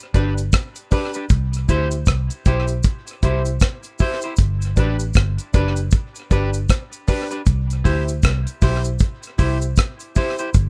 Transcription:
0.00 cabasa
0.14 G1 D4 G4 B4, kick, closed hi-hat, cabasa
0.38 closed hi-hat, cabasa
0.52 kick, cross-stick, closed hi-hat, cabasa
0.75 closed hi-hat, cabasa
0.91 D4 G4 B4, kick, open hi-hat, cabasa
1.14 D4 G4 B4, closed hi-hat, cabasa
1.29 C2, kick, closed hi-hat, cabasa
1.53 closed hi-hat, cabasa
1.68 D2 E4 G4 C5, kick, closed hi-hat, cabasa
1.91 closed hi-hat, cabasa
2.06 C2, kick, cross-stick, closed hi-hat, cabasa
2.30 closed hi-hat, cabasa
2.45 B1 E4 G4 C5, kick, closed hi-hat, cabasa
2.68 closed hi-hat, cabasa
2.83 kick, closed hi-hat, cabasa
3.07 closed hi-hat, cabasa
3.22 C2 E4 G4 C5, kick, closed hi-hat, cabasa
3.45 closed hi-hat, cabasa
3.60 kick, cross-stick, closed hi-hat, cabasa
3.83 closed hi-hat, cabasa
3.99 E4 G4 C5, kick, open hi-hat, cabasa
4.22 E4 G4 C5, closed hi-hat, cabasa
4.36 G1, kick, closed hi-hat, cabasa
4.62 closed hi-hat, cabasa
4.76 A1 D4 G4 B4, kick, closed hi-hat, cabasa
4.99 closed hi-hat, cabasa
5.14 G1, kick, cross-stick, closed hi-hat, cabasa
5.38 closed hi-hat, cabasa
5.53 F#1 D4 G4 B4, kick, closed hi-hat, cabasa
5.76 closed hi-hat, cabasa
5.91 kick, closed hi-hat, cabasa
6.15 closed hi-hat, cabasa
6.30 G1 D4 G4 B4, kick, closed hi-hat, cabasa
6.54 closed hi-hat, cabasa
6.69 kick, cross-stick, closed hi-hat, cabasa
6.92 closed hi-hat, cabasa
7.07 D4 G4 B4, kick, open hi-hat, cabasa
7.31 D4 G4 B4, closed hi-hat, cabasa
7.46 C2, kick, closed hi-hat, cabasa
7.70 closed hi-hat, cabasa
7.84 D2 E4 G4 C5, kick, open hi-hat, cabasa
8.08 closed hi-hat, cabasa
8.23 C2, kick, cross-stick, closed hi-hat, cabasa
8.47 closed hi-hat, cabasa
8.61 B1 E4 G4 C5, kick, open hi-hat, cabasa
8.84 closed hi-hat, cabasa
8.99 kick, closed hi-hat, cabasa
9.23 closed hi-hat, cabasa
9.38 C2 E4 G4 C5, kick, open hi-hat, cabasa
9.61 closed hi-hat, cabasa
9.76 kick, cross-stick, closed hi-hat, cabasa
10.00 closed hi-hat, cabasa
10.15 E4 G4 C5, kick, open hi-hat, cabasa
10.38 E4 G4 C5, closed hi-hat, cabasa
10.54 G1, kick, closed hi-hat, cabasa

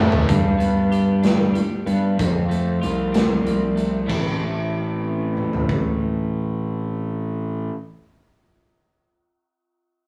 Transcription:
Already playing: A2 E3 A3 C4 E4
0.12 floor tom
0.27 G2, kick, closed hi-hat
0.59 B3, closed hi-hat
0.92 G4, closed hi-hat
1.23 D4, snare, closed hi-hat
1.54 G3, closed hi-hat
1.86 G2 B3, closed hi-hat
2.16 F2, kick, closed hi-hat
2.49 A3, closed hi-hat
2.82 C2 F4, closed hi-hat
3.12 C4, snare, closed hi-hat
3.45 F3, closed hi-hat
3.76 A3, closed hi-hat
4.06 A1 A2 E3 A3 C4 E4, kick, crash
5.37 mid tom
5.53 floor tom
5.69 kick

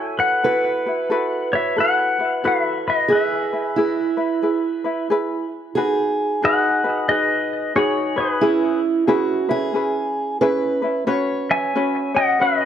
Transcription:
Already playing: E4 F#4 A4 C#5 E5 G#5
0.19 B4 F#5
0.44 E4 F#4 A4 B4
0.86 E4 F#4 B4
1.10 E4 F#4 A4 B4
1.53 E4 F#4 B4 C#5 E5
1.76 E4 F#4 A4 B4 F#5
2.19 E4 F#4 B4
2.44 E4 F#4 A4 B4 E5
2.88 B4 D#5
3.08 E4 G#4 B4
3.12 B4 E5
3.53 E4 B4
3.76 E4 G#4 B4
4.17 E4 B4
4.42 E4 G#4 B4
4.84 E4 B4
5.10 E4 G#4 B4
5.75 D#4 F#4 G#4 B4
6.42 D#4 F#4 G#4 B4 D#5 F#5
6.84 D#4 F#4 B4
7.08 D#4 F#4 G#4 B4 D#5
7.75 D#4 F#4 G#4 B4 C#5
8.16 D#4 F#4 B4
8.20 G#4
8.41 C#4 E4 G#4 B4
9.07 C#4 E4 F#4 G#4 B4
9.49 C#4 E4 G#4 B4
9.74 C#4 E4 G#4 B4
10.41 C#4 E4 G#4 B4
10.82 C#4 E4 B4
11.07 C#4 F#4 B4 C#5
11.51 E5 G#5
11.75 C#4 F#4 B4 C#5
12.14 C#4 F#4 C#5 D#5 F#5
12.40 C#4 F#4 B4 C#5 D#5

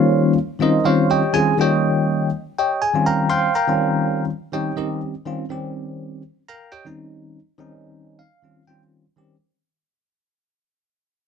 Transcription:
Already playing: D#3 G3 A#3 C#4 F4 C5 C#5 F5
0.59 D#3 G3 C4 C#4 D#4 F4 A#4 C5 D#5
0.84 D#3 G3 C4 C#4 F4 C5 C#5 F5
1.10 G4 C#5 D#5 G5
1.33 D#3 G3 C4 C#4 F4 G#4 G#5
1.58 D#3 G3 A#3 C#4 F4 D#5 G5
1.62 G4 C#5
2.58 G4 C#5 D#5 G5
2.82 G#4 G#5
2.94 D#3 G3 C4 C#4 F4
3.06 A#4 F5 G5 A#5
3.30 C5 F5 G5 C6
3.55 A#4 F5 G5 A#5
3.67 D#3 G3 C4 C#4 F4
4.52 D#3 G3 C4 C#4 D#4 G4 C#5 D#5 G5
4.76 D#3 G3 C4 C#4 D#4 G4 A#4 C5 D#5
5.25 D#3 G3 C4 C#4 F4
5.49 D#3 G3 C4 C#4 G4
6.48 A#4 F5 G5 A#5
6.72 G4 C#5 D#5 G5
6.85 D#3 G3 C4 C#4 D#4
7.58 D#3 G3 C4 C#4 D#4
8.19 F5
8.43 D#3 G3 C4 C#4 F4
8.67 D#3 G3 C4 C#4 F4 G5
9.16 D#3 G3 C4 C#4 G4

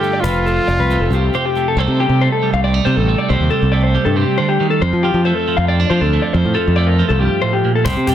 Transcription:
Already playing: G2 D3 G3 E4 F4 A4
0.00 A3 G4, cajon slap
0.13 D5
0.20 F1 F4 B4, cajon bass
0.24 F2 F3 A3 C4
0.46 C4 A4, cajon slap
0.67 F1 D5, cajon slap
0.79 C2 B4
0.90 F3 A3, cajon slap
1.00 F1 A4
1.10 C2 C4 G4, cajon slap
1.33 C3 G4 C5, cajon slap
1.45 G4
1.56 A3, cajon slap
1.68 A4
1.77 C2 C3 G3 A3 D#4 A4 C5
1.88 C3
2.00 G3 G4
2.09 C3
2.21 A3 C5
2.32 A4
2.43 G3
2.54 C2 F5
2.64 C4 D5
2.74 D#4
2.85 C3 G3 C5
2.96 A1 A4
3.08 A3
3.18 D5
3.29 C2 C3 C5
3.40 D#2
3.50 G3 A4
3.62 C2
3.72 A3 D5
3.83 C5
3.95 G3
4.05 G2 A4
4.16 C3 G4
4.38 D3 C5
4.48 G4
4.60 D#3
4.70 A4
4.82 F2 C5
4.93 F3
5.03 F3 G4
5.14 F3
5.25 A3 C5
5.35 A4
5.48 F3
5.57 F2 F5
5.68 C4 D5
5.80 D4
5.90 F3 C5
6.01 D2 A4
6.13 A3
6.22 D5
6.33 F2 C5
6.45 A2
6.54 F3 A4
6.68 F2
6.76 A3 D5
6.87 A#4
6.99 F3
7.09 C2 A4
7.20 G2 G4
7.42 A2 C5
7.53 G4
7.64 A#2
7.75 A4
7.85 C2 C3 C5, cajon bass
7.97 C3
8.07 G3 G4, cajon bass, cajon slap

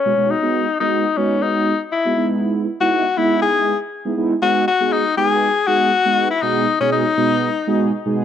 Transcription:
Already playing: C#4
0.05 B2 G#3 B3 D#4 F#4
0.17 B2 G#3 B3 D#4 F#4
0.30 D#4
0.42 G#3 B3 D#4 F#4
0.80 G#3 B3 D#4 F#4
1.17 G#3 B3 C#4 D#4 F#4
1.42 D#4
1.92 E4
2.05 G#3 B3 D#4 F#4
2.17 G#3 B3 D#4 E4
2.80 G#3 B3 D#4 E4 F#4
3.17 G#3 B3 D#4 E4
3.42 G#4
4.05 G#3 B3 D#4 E4
4.17 G#3 B3 D#4 E4
4.42 G#3 B3 D#4 F#4 G#4
4.67 F#4
4.80 G#3 B3 D#4 F#4 G#4
4.92 D#4
5.17 G#3 B3 D#4 F#4 G#4 B4
5.67 G#3 B3 D#4 F#4 G#4
6.05 G#3 B3 D#4 F#4 G#4
6.30 E4
6.42 B2 G#3 B3 D#4 F#4 G#4
6.80 B2 G#3 B3 C#4 D#4 F#4 G#4
6.92 D#4
7.17 B2 G#3 B3 D#4 F#4 B4
7.67 B2 G#3 B3 D#4 F#4 G#4
8.05 B2 G#3 B3 D#4 F#4 G#4

